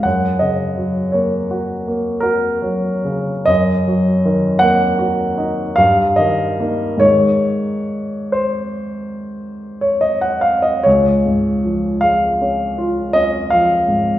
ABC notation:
X:1
M:9/8
L:1/16
Q:3/8=51
K:Db
V:1 name="Grand piano"
g2 e4 d6 B6 | e6 g6 f2 e4 | d6 c6- c d e g f e | d6 f6 e2 f4 |]
V:2 name="Grand piano" clef=bass
G,,2 D,2 G,2 B,2 G2 B,2 G2 G,2 D,2 | G,,2 G,2 E,2 B,2 G2 E2 =G,,2 E,2 [B,E]2 | [A,,E,A,E]16- [A,,E,A,E]2 | D,,2 A,,2 F,2 A,2 D2 F2 D2 F,2 A,,2 |]